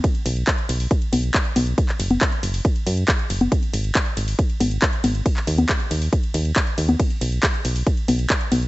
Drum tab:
RD |x-x-x-x-x-x-x-x-|x-x-x-x-x-x-x-x-|x-x-x-x-x-x-x-x-|x-x-x-x-x-x-x-x-|
HH |xxoxxxooxxoxxxox|xxoxxxooxxoxxxox|xxoxxxooxxoxxxox|xxoxxxooxxoxxxox|
CP |----x-------x---|-x--x-------x---|----x-------x---|-x--x-------x---|
CG |----------o---o-|---o-----------o|----------o---o-|---o-----------o|
BD |o---o---o---o---|o---o---o---o---|o---o---o---o---|o---o---o---o---|

RD |x-x-x-x-x-x-x-x-|
HH |xxoxxxooxxoxxxox|
CP |----x-------x---|
CG |----------o---o-|
BD |o---o---o---o---|